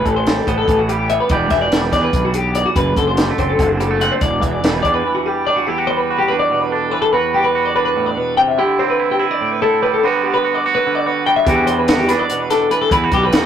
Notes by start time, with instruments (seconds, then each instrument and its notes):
Already playing: clean electric guitar A2
0.05 fingered electric bass A1, clean electric guitar E3 A4, kick, closed hi-hat
0.16 clean electric guitar C5
0.27 clean electric guitar G3, snare, closed hi-hat
0.37 clean electric guitar A4
0.47 fingered electric bass A1, clean electric guitar B3 C5, kick, closed hi-hat
0.58 clean electric guitar A4
0.68 fingered electric bass A1, clean electric guitar E3, kick, closed hi-hat
0.79 clean electric guitar F#4
0.89 clean electric guitar G3 G4, closed hi-hat
1.10 clean electric guitar B3 E5, closed hi-hat
1.20 clean electric guitar B4
1.29 fingered electric bass E1, clean electric guitar E2 E3 G3 D4 G4 D5, kick, closed hi-hat
1.50 fingered electric bass E1, clean electric guitar E3 E5, kick, snare, closed hi-hat
1.61 clean electric guitar D5
1.72 fingered electric bass E1, clean electric guitar G3, snare, closed hi-hat
1.82 clean electric guitar B4
1.92 fingered electric bass E2, clean electric guitar D4 D5, kick, snare, closed hi-hat
2.03 clean electric guitar B4
2.13 fingered electric bass B1, kick, closed hi-hat
2.25 clean electric guitar F#4
2.34 clean electric guitar G4, closed hi-hat
2.55 clean electric guitar E2 D5, closed hi-hat
2.66 clean electric guitar F#4
2.76 fingered electric bass F#1, clean electric guitar F#2 B4, kick, closed hi-hat
2.97 fingered electric bass F#1, clean electric guitar D3 A4, kick, closed hi-hat
3.08 clean electric guitar C5
3.17 clean electric guitar G3, snare, closed hi-hat
3.28 clean electric guitar A3 A4
3.38 fingered electric bass F#1, clean electric guitar C4 C5, kick, closed hi-hat
3.49 clean electric guitar A4
3.59 fingered electric bass F#1, clean electric guitar D3, kick, closed hi-hat
3.70 clean electric guitar F#4
3.80 clean electric guitar G3 A4, closed hi-hat
3.91 clean electric guitar A3
4.01 clean electric guitar C4 F#5, closed hi-hat
4.12 clean electric guitar C5
4.21 fingered electric bass E1, clean electric guitar E2 D5, kick, closed hi-hat
4.42 fingered electric bass E1, clean electric guitar E3 E5, kick, closed hi-hat
4.52 clean electric guitar D5
4.64 fingered electric bass E1, clean electric guitar G3, snare, closed hi-hat
4.74 clean electric guitar B4
4.83 fingered electric bass E2, clean electric guitar D4 D5, kick, closed hi-hat
4.94 clean electric guitar B4
5.07 clean electric guitar E3
5.15 clean electric guitar F#4
5.26 clean electric guitar G3 G4
5.47 clean electric guitar D4 D5
5.56 clean electric guitar F#4
5.67 clean electric guitar E2 E4 G4
5.78 clean electric guitar F#4
5.87 clean electric guitar G3 C5
5.97 clean electric guitar B4
6.10 clean electric guitar F#4
6.18 clean electric guitar G4
6.28 clean electric guitar D4 B4
6.39 clean electric guitar D5
6.51 clean electric guitar B2
6.61 clean electric guitar B4
6.71 clean electric guitar D4 A4
6.91 clean electric guitar E3 B4
7.02 clean electric guitar A4
7.13 clean electric guitar E2 F#4 B4
7.34 clean electric guitar G3 G4
7.44 clean electric guitar B4
7.55 clean electric guitar F#4
7.65 clean electric guitar D5
7.76 clean electric guitar D4 B4
7.85 clean electric guitar B4
7.96 clean electric guitar A2
8.06 clean electric guitar D5
8.17 clean electric guitar B2 B4
8.37 clean electric guitar C3 G5
8.48 clean electric guitar E5
8.58 clean electric guitar D3 E4 G4
8.79 clean electric guitar C4 C5
8.90 clean electric guitar B4
8.99 clean electric guitar E4
9.11 clean electric guitar G4
9.20 clean electric guitar E4 B4
9.31 clean electric guitar D5
9.41 clean electric guitar A2
9.52 clean electric guitar B4
9.62 clean electric guitar E4 A4
9.82 clean electric guitar G3 B4
9.94 clean electric guitar A4
10.03 clean electric guitar D3 G3 B3 F#4 B4
10.24 clean electric guitar B3 G4
10.34 clean electric guitar B4
10.45 clean electric guitar F#4
10.55 clean electric guitar D5
10.64 clean electric guitar F#4 B4
10.75 clean electric guitar B4
10.86 clean electric guitar D3
10.95 clean electric guitar D5
11.06 clean electric guitar F#4 B4
11.27 clean electric guitar G3 G5
11.36 clean electric guitar E5
11.46 clean electric guitar E2 E3 G3 D4 F#4 G4, fingered electric bass E2, kick, closed hi-hat
11.67 clean electric guitar G3 C5, closed hi-hat
11.78 clean electric guitar B4
11.88 clean electric guitar F#4, snare, closed hi-hat
11.98 clean electric guitar G4
12.08 clean electric guitar D4 B4, snare, closed hi-hat
12.19 clean electric guitar D5
12.30 clean electric guitar B2, closed hi-hat
12.40 clean electric guitar B4
12.50 clean electric guitar D4 A4, snare, closed hi-hat
12.71 clean electric guitar E3 B4, closed hi-hat
12.81 clean electric guitar A4
12.91 fingered electric bass E2, clean electric guitar E2 E4 B4, kick, closed hi-hat
13.04 clean electric guitar F#4
13.12 fingered electric bass B1, clean electric guitar G3 G4, kick, closed hi-hat
13.24 clean electric guitar B4
13.33 fingered electric bass E2, clean electric guitar F#4, snare, closed hi-hat